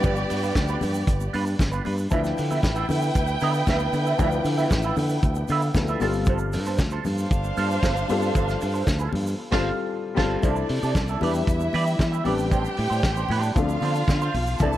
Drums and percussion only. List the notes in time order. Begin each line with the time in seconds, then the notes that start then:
0.03 kick, closed hi-hat, low conga, shaker
0.16 shaker
0.30 open hi-hat, shaker
0.43 high conga, shaker
0.55 kick, snare, closed hi-hat, shaker
0.68 muted conga, shaker
0.81 open hi-hat, high conga, low conga, shaker
0.94 shaker
1.07 kick, closed hi-hat, shaker
1.20 muted conga, shaker
1.33 open hi-hat, high conga
1.46 shaker
1.59 kick, snare, closed hi-hat, high conga, shaker
1.72 shaker
1.85 open hi-hat, high conga
1.98 shaker
2.11 kick, closed hi-hat, muted conga, low conga, shaker
2.24 snare, muted conga, shaker
2.38 open hi-hat, shaker
2.51 high conga, shaker
2.63 kick, snare, closed hi-hat, muted conga, shaker
2.75 shaker
2.89 open hi-hat, high conga, low conga, shaker
3.02 shaker
3.15 kick, closed hi-hat, shaker
3.27 shaker
3.40 open hi-hat, high conga, shaker
3.54 shaker
3.67 kick, snare, closed hi-hat, muted conga, high conga, shaker
3.79 shaker
3.93 open hi-hat, high conga, shaker
4.06 shaker
4.19 kick, closed hi-hat, muted conga, low conga, shaker
4.32 shaker
4.45 open hi-hat, shaker
4.58 high conga, shaker
4.71 kick, snare, closed hi-hat, shaker
4.82 shaker
4.96 open hi-hat, high conga, low conga, shaker
5.09 shaker
5.23 kick, closed hi-hat, muted conga, shaker
5.35 muted conga, shaker
5.48 open hi-hat, high conga, shaker
5.61 shaker
5.74 kick, snare, closed hi-hat, muted conga, high conga, shaker
5.88 muted conga, shaker
6.00 open hi-hat, high conga, shaker
6.13 shaker
6.26 kick, closed hi-hat, muted conga, low conga, shaker
6.38 shaker
6.52 open hi-hat, shaker
6.66 high conga, shaker
6.78 kick, snare, closed hi-hat, shaker
6.90 shaker
7.05 open hi-hat, high conga, low conga, shaker
7.18 shaker
7.31 kick, closed hi-hat, shaker
7.44 muted conga, shaker
7.57 open hi-hat, high conga, shaker
7.71 shaker
7.83 kick, snare, closed hi-hat, high conga, shaker
7.97 muted conga, shaker
8.09 open hi-hat, high conga, shaker
8.22 shaker
8.35 kick, closed hi-hat, low conga, shaker
8.49 snare, shaker
8.61 open hi-hat, shaker
8.75 shaker
8.87 kick, snare, closed hi-hat, muted conga, shaker
8.99 shaker
9.13 open hi-hat, high conga, low conga
9.27 shaker
9.52 kick, snare, crash
10.17 kick, snare, crash
10.43 kick, closed hi-hat, muted conga, low conga, shaker
10.56 shaker
10.69 open hi-hat
10.83 shaker
10.95 kick, snare, closed hi-hat, shaker
11.08 muted conga, shaker
11.21 open hi-hat, high conga, low conga
11.34 shaker
11.47 kick, closed hi-hat, shaker
11.60 muted conga, shaker
11.73 open hi-hat, high conga
11.87 shaker
11.99 kick, snare, closed hi-hat, muted conga, high conga, shaker
12.13 shaker
12.25 open hi-hat, high conga, low conga
12.39 shaker
12.51 kick, closed hi-hat, low conga, shaker
12.64 muted conga, shaker
12.77 open hi-hat
12.92 shaker
13.03 kick, snare, closed hi-hat, muted conga, shaker
13.16 muted conga, shaker
13.28 open hi-hat, high conga, low conga
13.43 shaker
13.56 kick, closed hi-hat, muted conga, shaker
13.69 muted conga, shaker
13.81 open hi-hat, high conga
13.95 shaker
14.08 kick, snare, closed hi-hat, high conga, shaker
14.21 muted conga, shaker
14.34 open hi-hat, high conga, low conga
14.47 shaker
14.59 kick, closed hi-hat, low conga, shaker
14.73 muted conga, shaker